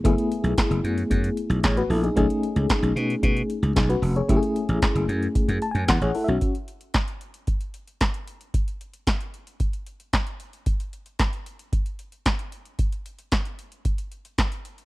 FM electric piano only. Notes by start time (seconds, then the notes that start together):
0.04 A3 B3 E4 G#4
1.64 G#4 C#5
1.77 F#4 B4
1.90 E4 A4
2.03 D#4 G#4
2.16 A3 C#4 D#4 G#4
3.76 D#4 G#4
3.89 F#4 B4
4.17 G#4 C#5
4.29 A3 C#4 E4 G4
4.37 G#4
5.62 A5
5.71 G#5
5.89 F#5
6.02 G#4 C#5
6.15 E4 A4
6.24 E5
6.29 C#4 F#4